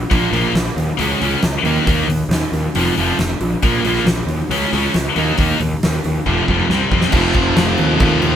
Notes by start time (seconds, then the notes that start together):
0.10 A#1 A#2 F3 A#3, kick, open hi-hat
0.31 A#1 A#2 F3 A#3, open hi-hat
0.54 A#1, snare, open hi-hat
0.76 D#2, open hi-hat
0.97 C#2 C#3 G#3 C#4, open hi-hat
1.21 C#2 C#3 G#3 C#4, open hi-hat
1.43 C#2, snare, open hi-hat
1.63 D#2 D#3 A#3 D#4, open hi-hat
1.86 D#2 D#3 A#3 D#4, kick, open hi-hat
2.07 D#2, open hi-hat
2.29 D#2, snare, open hi-hat
2.52 D#2, open hi-hat
2.75 F1 F2 C3 F3, open hi-hat
2.97 F1 F2 C3 F3, open hi-hat
3.18 F1, snare, open hi-hat
3.41 A#1, open hi-hat
3.62 A#1 A#2 F3 A#3, kick, open hi-hat
3.84 A#1 A#2 F3 A#3, open hi-hat
3.96 snare
4.05 A#1, snare, open hi-hat
4.26 D#2, open hi-hat
4.49 C#2 C#3 G#3 C#4, open hi-hat
4.72 C#2 C#3 G#3 C#4, open hi-hat
4.94 C#2, snare, open hi-hat
5.16 D#2 D#3 A#3 D#4, open hi-hat
5.38 D#2 D#3 A#3 D#4, kick, open hi-hat
5.60 D#2, open hi-hat
5.83 D#2, snare, open hi-hat
6.04 D#2, open hi-hat
6.26 F1 F2 C3 F3, kick
6.48 F1 F2 C3 F3, kick
6.60 mid tom
6.69 C2 C3 G3 C4, snare
6.91 F2 C3 G3 C4, kick
7.01 snare
7.12 F1 F2 C3 F3 C4 G4, kick, crash
7.16 F3
7.33 F1, kick, crash
7.56 F1, snare, crash
7.77 D#2, crash
7.99 D#2 F2 C3, kick, crash
8.03 F3
8.22 D#2, crash